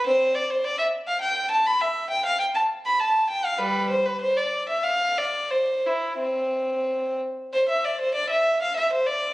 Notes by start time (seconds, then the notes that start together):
0.06 C4 C5
0.35 D5
0.50 C5
0.65 D5
0.79 E5
1.07 F5
1.22 G5
1.51 A5
1.66 B5
1.81 E5
2.10 G5
2.26 F5
2.39 G5
2.55 A5
2.86 B5
3.00 A5
3.30 G5
3.45 F5
3.58 G3 B4
3.90 C5
4.06 B4
4.21 C5
4.36 D5
4.69 E5
4.84 F5
5.17 D5
5.51 C5
5.86 E4
6.19 C4
7.54 C5
7.69 E5
7.84 D5
8.01 C5
8.15 D5
8.30 E5
8.62 F5
8.77 E5
8.93 C5
9.06 D5